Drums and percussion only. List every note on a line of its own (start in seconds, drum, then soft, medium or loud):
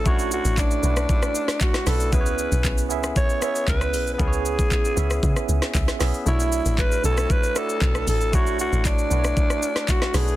0.06 kick loud
0.06 shaker medium
0.19 shaker medium
0.32 shaker loud
0.45 shaker medium
0.57 kick medium
0.57 clap medium
0.57 shaker medium
0.71 shaker medium
0.83 shaker medium
0.97 cross-stick loud
0.97 shaker medium
1.09 kick loud
1.09 shaker medium
1.23 cross-stick loud
1.23 shaker medium
1.35 shaker loud
1.48 cross-stick loud
1.48 snare medium
1.48 shaker medium
1.61 kick loud
1.61 clap loud
1.61 shaker medium
1.74 cross-stick loud
1.74 snare medium
1.74 shaker soft
1.87 cross-stick loud
1.87 snare medium
1.87 open hi-hat medium
1.87 shaker medium
2.00 shaker medium
2.13 kick loud
2.13 shaker medium
2.26 shaker medium
2.38 shaker medium
2.52 shaker medium
2.64 kick medium
2.64 clap loud
2.64 shaker medium
2.78 shaker medium
2.90 shaker medium
3.03 cross-stick loud
3.03 shaker medium
3.16 kick loud
3.16 shaker medium
3.29 shaker medium
3.42 cross-stick loud
3.42 shaker loud
3.55 shaker medium
3.68 kick loud
3.68 clap loud
3.68 shaker medium
3.81 cross-stick loud
3.81 shaker soft
3.94 open hi-hat medium
3.94 shaker medium
4.07 shaker medium
4.19 kick loud
4.19 shaker medium
4.33 shaker medium
4.46 shaker medium
4.59 kick medium
4.59 shaker medium
4.71 kick medium
4.71 clap loud
4.71 shaker medium
4.85 shaker medium
4.97 shaker medium
5.10 cross-stick loud
5.10 shaker medium
5.23 kick loud
5.23 shaker medium
5.36 cross-stick loud
5.36 shaker medium
5.49 shaker medium
5.62 cross-stick loud
5.62 snare medium
5.62 shaker medium
5.75 kick loud
5.75 clap loud
5.75 shaker medium
5.88 cross-stick loud
5.88 snare medium
5.88 shaker soft
6.01 cross-stick loud
6.01 snare medium
6.01 open hi-hat medium
6.01 shaker medium
6.14 shaker medium
6.26 shaker medium
6.40 shaker medium
6.52 shaker medium
6.66 shaker medium
6.78 kick medium
6.78 clap medium
6.78 shaker medium
6.92 shaker medium
7.04 shaker medium
7.17 cross-stick loud
7.17 shaker medium
7.30 kick loud
7.30 shaker medium
7.43 shaker medium
7.56 cross-stick loud
7.56 shaker loud
7.69 shaker medium
7.81 kick medium
7.81 clap loud
7.81 shaker medium
7.95 cross-stick loud
7.95 shaker soft
8.07 open hi-hat medium
8.07 shaker medium
8.21 shaker medium
8.33 kick loud
8.33 shaker medium
8.47 shaker medium
8.59 shaker medium
8.73 shaker medium
8.85 kick medium
8.85 clap medium
8.85 shaker medium
8.99 shaker medium
9.11 shaker medium
9.24 cross-stick loud
9.24 shaker medium
9.37 kick loud
9.37 shaker medium
9.50 cross-stick loud
9.50 shaker medium
9.63 shaker loud
9.76 cross-stick loud
9.76 snare medium
9.76 shaker medium
9.88 kick medium
9.88 clap loud
9.88 shaker medium
10.02 cross-stick loud
10.02 snare medium
10.02 shaker soft
10.14 cross-stick loud
10.14 snare medium
10.14 open hi-hat medium
10.14 shaker medium
10.28 shaker medium